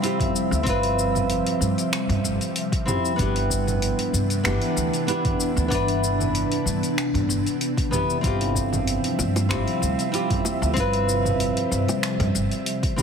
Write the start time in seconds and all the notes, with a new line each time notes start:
Already playing: C3 F3 G3 E5
0.02 C4 E4 F4 G4, open hi-hat, cabasa
0.20 kick, mid tom, open hi-hat
0.36 cabasa
0.51 D2, cabasa
0.63 G1 C4 E4 F4, kick, open hi-hat
0.67 B4, cabasa
0.83 open hi-hat
0.99 cabasa
1.15 mid tom, cabasa
1.30 open hi-hat, cabasa
1.47 open hi-hat
1.61 G2, cabasa
1.78 open hi-hat, cabasa
1.93 finger snap, open hi-hat, cabasa
2.09 G2, mid tom, open hi-hat
2.24 G1, cabasa
2.41 open hi-hat, cabasa
2.56 open hi-hat, cabasa
2.72 kick, open hi-hat
2.85 C4 E4 F4 G4, mid tom, cabasa
3.05 cabasa
3.16 G1 E3 B3 D4, kick, open hi-hat
3.20 E4 G4, cabasa
3.36 open hi-hat
3.50 kick, cabasa
3.67 mid tom, cabasa
3.82 open hi-hat, cabasa
3.99 open hi-hat
4.13 G2, cabasa
4.30 open hi-hat, cabasa
4.43 G1 B3 D4 E4 G4, finger snap, open hi-hat, cabasa
4.62 open hi-hat
4.76 D2, cabasa
4.93 open hi-hat, cabasa
5.07 B3 D4 E4 G4, open hi-hat, cabasa
5.25 kick, mid tom, open hi-hat
5.40 cabasa
5.56 D2, cabasa
5.68 G1 B3 D4, kick, open hi-hat
5.72 E4 B4, cabasa
5.88 open hi-hat
6.04 cabasa
6.20 mid tom, cabasa
6.35 open hi-hat, cabasa
6.52 open hi-hat
6.66 G2, cabasa
6.83 open hi-hat, cabasa
6.98 finger snap, open hi-hat, cabasa
7.14 G2, mid tom, open hi-hat
7.29 G1, cabasa
7.46 open hi-hat, cabasa
7.61 open hi-hat, cabasa
7.77 kick, open hi-hat
7.91 B3 D4 E4 G4, kick, mid tom, cabasa
8.10 cabasa
8.21 G1 F3 G3 C4 E4 E5, kick, open hi-hat, cabasa
8.25 F4 G4
8.41 open hi-hat
8.55 kick, cabasa
8.73 mid tom, cabasa
8.87 open hi-hat, cabasa
9.04 open hi-hat
9.19 G2, high bongo, cabasa
9.36 open hi-hat, high bongo, cabasa
9.49 G1 C4 E4 F4 G4, finger snap, open hi-hat, cabasa
9.68 open hi-hat
9.82 D2, cabasa
9.99 open hi-hat, cabasa
10.12 C4 E4 F4 G4, open hi-hat, cabasa
10.30 kick, mid tom, open hi-hat
10.45 high bongo, cabasa
10.62 D2, cabasa
10.74 G1 C4 E4, kick, open hi-hat, cabasa
10.78 F4 B4
10.93 open hi-hat
11.09 cabasa
11.25 mid tom, cabasa
11.40 open hi-hat, cabasa
11.57 open hi-hat
11.71 G2, cabasa
11.88 open hi-hat, high bongo, cabasa
12.03 finger snap, open hi-hat, cabasa
12.20 G2, mid tom, open hi-hat
12.35 G1, cabasa
12.51 open hi-hat, cabasa
12.66 open hi-hat, cabasa
12.83 kick, open hi-hat
12.96 C4 E4 F4, mid tom, cabasa